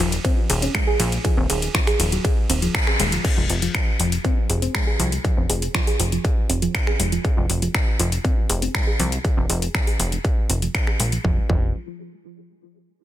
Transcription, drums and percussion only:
0.12 closed hi-hat soft
0.25 kick loud
0.25 closed hi-hat soft
0.25 ride medium
0.50 open hi-hat loud
0.50 ride medium
0.62 closed hi-hat soft
0.75 finger snap loud
0.75 kick loud
0.75 closed hi-hat soft
0.75 ride medium
1.00 open hi-hat loud
1.00 ride medium
1.12 closed hi-hat soft
1.25 kick loud
1.25 closed hi-hat soft
1.25 ride medium
1.50 open hi-hat loud
1.50 ride medium
1.62 closed hi-hat medium
1.75 finger snap loud
1.75 kick loud
1.75 closed hi-hat soft
1.75 ride medium
1.87 finger snap soft
1.87 open hi-hat medium
2.00 open hi-hat loud
2.00 ride medium
2.12 closed hi-hat soft
2.25 kick loud
2.25 closed hi-hat soft
2.25 ride medium
2.50 open hi-hat loud
2.50 ride medium
2.62 closed hi-hat soft
2.75 finger snap loud
2.75 kick loud
2.75 closed hi-hat soft
2.75 ride medium
2.87 finger snap soft
3.00 open hi-hat loud
3.00 ride medium
3.12 closed hi-hat soft
3.25 kick loud
3.25 closed hi-hat soft
3.25 crash loud
3.50 open hi-hat loud
3.62 closed hi-hat soft
3.75 finger snap loud
3.75 kick loud
3.75 closed hi-hat soft
4.00 open hi-hat loud
4.12 closed hi-hat soft
4.25 kick loud
4.25 closed hi-hat soft
4.50 open hi-hat loud
4.62 closed hi-hat soft
4.75 finger snap loud
4.75 kick loud
4.75 closed hi-hat soft
5.00 open hi-hat loud
5.12 closed hi-hat soft
5.25 kick loud
5.25 closed hi-hat soft
5.50 open hi-hat loud
5.62 closed hi-hat soft
5.75 finger snap loud
5.75 kick loud
5.75 closed hi-hat soft
5.87 open hi-hat medium
6.00 open hi-hat loud
6.12 closed hi-hat soft
6.25 kick loud
6.25 closed hi-hat soft
6.50 open hi-hat loud
6.62 closed hi-hat soft
6.75 finger snap loud
6.75 kick loud
6.75 closed hi-hat soft
6.87 finger snap soft
7.00 open hi-hat loud
7.12 closed hi-hat soft
7.25 kick loud
7.25 closed hi-hat soft
7.50 open hi-hat loud
7.62 closed hi-hat soft
7.75 finger snap loud
7.75 kick loud
7.75 closed hi-hat soft
8.00 open hi-hat loud
8.12 closed hi-hat soft
8.25 kick loud
8.25 closed hi-hat soft
8.50 open hi-hat loud
8.62 closed hi-hat soft
8.75 finger snap loud
8.75 kick loud
9.00 open hi-hat loud
9.12 closed hi-hat soft
9.25 kick loud
9.25 closed hi-hat soft
9.50 open hi-hat loud
9.62 closed hi-hat soft
9.75 finger snap loud
9.75 kick loud
9.75 closed hi-hat soft
9.87 open hi-hat medium
10.00 open hi-hat loud
10.12 closed hi-hat soft
10.25 kick loud
10.25 closed hi-hat soft
10.50 open hi-hat loud
10.62 closed hi-hat soft
10.75 finger snap loud
10.75 kick loud
10.75 closed hi-hat soft
10.87 finger snap soft
11.00 open hi-hat loud
11.12 closed hi-hat soft
11.25 kick loud
11.50 kick loud

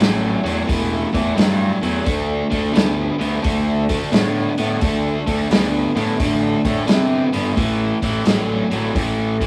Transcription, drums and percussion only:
0.00 snare loud
0.00 open hi-hat medium
0.46 open hi-hat medium
0.69 kick loud
0.69 open hi-hat medium
1.14 kick medium
1.14 open hi-hat medium
1.38 snare loud
1.38 open hi-hat medium
1.83 open hi-hat medium
2.06 kick loud
2.06 open hi-hat medium
2.52 kick medium
2.52 open hi-hat medium
2.75 snare loud
2.75 open hi-hat medium
3.21 open hi-hat medium
3.44 kick loud
3.44 open hi-hat medium
3.89 kick medium
3.89 open hi-hat medium
4.13 snare loud
4.13 open hi-hat medium
4.58 open hi-hat medium
4.81 kick loud
4.81 open hi-hat medium
5.27 kick medium
5.27 open hi-hat medium
5.51 snare loud
5.51 open hi-hat medium
5.97 open hi-hat medium
6.20 kick loud
6.20 open hi-hat medium
6.65 kick medium
6.65 open hi-hat medium
6.88 snare loud
6.88 open hi-hat medium
7.33 open hi-hat medium
7.57 kick loud
7.57 open hi-hat medium
8.02 kick medium
8.02 open hi-hat medium
8.25 snare loud
8.25 open hi-hat medium
8.71 open hi-hat soft
8.95 kick loud
8.95 open hi-hat medium
9.41 kick medium
9.41 open hi-hat medium

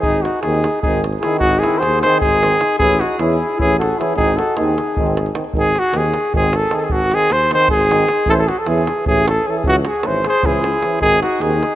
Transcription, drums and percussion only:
0.03 davul low medium
0.25 davul high medium
0.43 davul high medium
0.54 davul high soft
0.64 davul high medium
0.83 davul low loud
0.94 davul high soft
1.04 davul high medium
1.13 davul high soft
1.23 davul high medium
1.41 davul low medium
1.54 davul high soft
1.63 davul high medium
1.83 davul high medium
1.93 davul high soft
2.03 davul high medium
2.13 davul high soft
2.22 davul low medium
2.33 davul high soft
2.43 davul high medium
2.61 davul high medium
2.80 davul low medium
2.91 davul high soft
3.01 davul high medium
3.19 davul high medium
3.32 davul high soft
3.51 davul high soft
3.60 davul low medium
3.70 davul high soft
3.81 davul high medium
3.91 davul high soft
4.01 davul high medium
4.18 davul low medium
4.28 davul high soft
4.39 davul high medium
4.57 davul high medium
4.78 davul high medium
4.87 davul high soft
4.97 davul low loud
5.07 davul high soft
5.17 davul high medium
5.26 davul high soft
5.35 davul high medium
5.44 davul high soft
5.54 davul low medium
5.65 davul high soft
5.75 davul high medium
5.94 davul high medium
6.05 davul high soft
6.14 davul high medium
6.25 davul high soft
6.34 davul low loud
6.43 davul high soft
6.53 davul high medium
6.63 davul high soft
6.71 davul high medium
6.90 davul low medium
6.99 davul high soft
7.11 davul high medium
7.30 davul high medium
7.51 davul high medium
7.60 davul high soft
7.68 davul low medium
7.80 davul high soft
7.91 davul high medium
7.99 davul high soft
8.08 davul high medium
8.26 davul low medium
8.37 davul high soft
8.49 davul high medium
8.66 davul high medium
8.78 davul high soft
8.87 davul high medium
8.97 davul high soft
9.06 davul low loud
9.16 davul high soft
9.28 davul high medium
9.37 davul high soft
9.64 davul low loud
9.85 davul high medium
9.93 davul high soft
10.03 davul high medium
10.24 davul high medium
10.34 davul high soft
10.43 davul low loud
10.53 davul high soft
10.64 davul high medium
10.74 davul high soft
10.82 davul high medium
11.02 davul low medium
11.23 davul high medium
11.41 davul high medium
11.53 davul high soft
11.63 davul high medium

